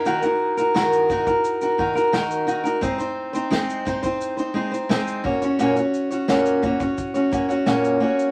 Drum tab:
SH |xx-xxxxxxx-xxxxx|xx-xxxxxxx-xxx-x|xxxxxxxxxxxxxx-x|
SD |----o-------o---|----o-------o---|----o-------o---|
BD |------oo--o-----|o-----oo------o-|------ooo-o-----|